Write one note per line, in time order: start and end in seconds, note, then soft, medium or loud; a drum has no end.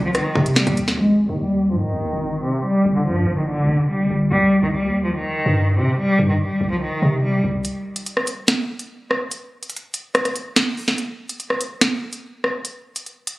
0.00 0.14 C2 loud
0.04 0.14 F3 medium
0.15 0.54 D#3 medium
0.15 cross-stick loud
0.15 closed hi-hat medium
0.35 0.66 C3 loud
0.35 kick medium
0.46 closed hi-hat medium
0.56 0.76 G3 medium
0.56 snare loud
0.67 0.97 D#2 loud
0.67 kick medium
0.67 closed hi-hat medium
0.77 closed hi-hat medium
0.88 snare medium
0.98 1.28 G#1 loud
0.98 1.27 G#3 loud
1.29 1.72 D#2 loud
1.29 1.39 D#3 medium
1.40 1.69 G3 medium
1.71 1.93 G#2 loud
1.71 1.81 F3 medium
1.81 2.40 D#3 medium
1.92 2.12 D#2 loud
2.13 2.43 G#1 loud
2.44 2.63 C3 medium
2.65 2.94 G3 loud
2.86 3.08 G1 loud
2.96 3.06 D3 medium
3.06 3.26 G2 loud
3.06 3.36 F3 medium
3.27 3.60 G1 loud
3.37 3.47 D#3 medium
3.48 3.87 D3 medium
3.58 3.68 D2 loud
3.69 4.02 F1 loud
3.90 4.09 G3 medium
4.00 4.10 G#1 loud
4.11 4.31 G1 loud
4.31 4.61 C2 loud
4.31 4.61 G3 loud
4.63 4.85 C2 loud
4.63 4.72 D#3 medium
4.73 5.02 G3 medium
4.83 5.13 D#2 loud
5.04 5.14 F3 medium
5.15 5.74 D#3 medium
5.46 5.79 G2 loud
5.77 5.87 C3 loud
5.77 5.97 C3 medium
5.98 6.27 G3 loud
6.19 6.39 G2 loud
6.29 6.39 D#3 medium
6.40 6.69 G3 medium
6.61 6.81 C2 loud
6.71 6.81 F3 medium
6.82 7.21 D#3 medium
7.02 7.42 C3 loud
7.23 7.42 G3 medium
7.44 7.64 C2 loud
7.65 closed hi-hat medium
7.96 closed hi-hat medium
8.06 closed hi-hat medium
8.17 cross-stick medium
8.27 closed hi-hat medium
8.48 snare loud
8.48 closed hi-hat medium
8.79 closed hi-hat medium
9.11 cross-stick medium
9.31 closed hi-hat medium
9.63 closed hi-hat soft
9.70 closed hi-hat medium
9.76 closed hi-hat medium
9.94 closed hi-hat medium
10.15 cross-stick loud
10.15 closed hi-hat soft
10.25 cross-stick medium
10.25 closed hi-hat medium
10.36 closed hi-hat medium
10.56 snare loud
10.56 closed hi-hat medium
10.77 open hi-hat medium
10.88 snare medium
10.98 closed hi-hat medium
11.29 closed hi-hat medium
11.40 closed hi-hat medium
11.50 cross-stick medium
11.61 closed hi-hat medium
11.81 snare loud
11.81 closed hi-hat medium
12.13 closed hi-hat medium
12.44 cross-stick medium
12.65 closed hi-hat medium
12.96 closed hi-hat medium
13.06 closed hi-hat soft
13.27 closed hi-hat medium